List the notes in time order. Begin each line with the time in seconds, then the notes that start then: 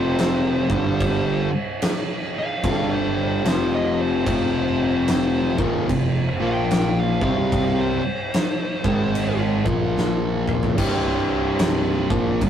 Already playing: F1 F2 C3 F3 C5
0.19 snare, crash
0.70 G1 G2 D3 G3, kick
1.00 kick, crash
1.82 snare, crash
2.39 F5
2.63 G1 G2 D3 G3, kick, crash
2.94 C5
3.44 F1 F2 C3 F3, snare, crash
3.75 D#5
4.01 C5
4.25 F1 F2 C3 F3, kick, crash
5.08 snare, crash
5.58 D#1 D#2 A#2 D#3, kick
5.89 F1 F2 C3, kick, crash
6.40 A#1 A#2 F3 A#3
6.47 G5
6.71 snare, crash
7.00 F5
7.21 C2 C3 G3 C4, kick
7.27 F5
7.52 kick, crash
7.81 C5
8.34 snare, crash
8.84 G#1 G#2 D#3 G#3, kick
9.15 crash
9.65 A#1 A#2 F3 A#3, kick
9.97 snare
10.48 mid tom
10.63 floor tom
10.77 C1 C2 G2 C3, kick, crash
11.59 snare, crash
12.10 A#1 A#2 F3 A#3, kick
12.41 C1 C2 G2, kick, crash